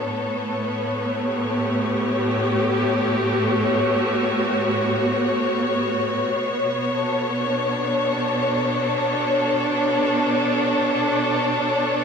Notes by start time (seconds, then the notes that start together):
Already playing: B3 A4 C#5
0.05 A2
0.34 A3
1.24 G4
1.34 F#4
6.33 B2
6.94 A4
7.39 D4